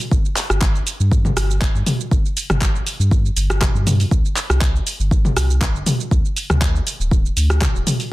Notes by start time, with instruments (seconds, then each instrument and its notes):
0.00 open hi-hat, shaker
0.11 sub bass G1, kick, shaker
0.25 shaker
0.37 clap, open hi-hat, shaker
0.50 sub bass G1, cross-stick, shaker
0.61 kick, clap, shaker
0.76 shaker
0.87 open hi-hat, shaker
1.00 sub bass G2, shaker
1.12 kick, shaker
1.25 mid tom, shaker
1.37 sub bass G1, cross-stick, open hi-hat, shaker
1.51 shaker
1.62 kick, clap, shaker
1.75 sub bass G2, shaker
1.86 open hi-hat, mid tom, shaker
2.01 shaker
2.11 sub bass G1, kick, shaker
2.26 shaker
2.37 open hi-hat, shaker
2.50 sub bass G1, cross-stick, mid tom, shaker
2.61 kick, clap, shaker
2.75 shaker
2.87 open hi-hat, shaker
2.99 sub bass G2, shaker
3.11 kick, shaker
3.26 shaker
3.36 sub bass G1, open hi-hat, shaker
3.50 cross-stick, shaker
3.61 kick, cross-stick, clap, mid tom, shaker
3.74 sub bass G2, shaker
3.87 open hi-hat, mid tom, shaker
4.00 open hi-hat, shaker
4.11 sub bass C2, kick, shaker
4.25 shaker
4.37 clap, open hi-hat, shaker
4.50 sub bass C2, cross-stick, shaker
4.61 kick, clap, shaker
4.76 shaker
4.87 open hi-hat, shaker
5.00 sub bass G1, shaker
5.11 kick, shaker
5.25 mid tom, shaker
5.36 sub bass C2, cross-stick, open hi-hat, shaker
5.50 shaker
5.61 kick, clap, shaker
5.75 sub bass G1, shaker
5.86 open hi-hat, mid tom, shaker
6.00 shaker
6.11 sub bass D2, kick, shaker
6.25 shaker
6.37 open hi-hat, shaker
6.50 sub bass D2, cross-stick, mid tom, shaker
6.61 kick, clap, shaker
6.76 shaker
6.87 open hi-hat, shaker
7.00 sub bass D1, shaker
7.11 kick, shaker
7.26 shaker
7.37 sub bass D2, open hi-hat, shaker
7.50 cross-stick, shaker
7.62 kick, cross-stick, clap, mid tom, shaker
7.75 sub bass D1, shaker
7.87 open hi-hat, mid tom, shaker
8.00 open hi-hat, shaker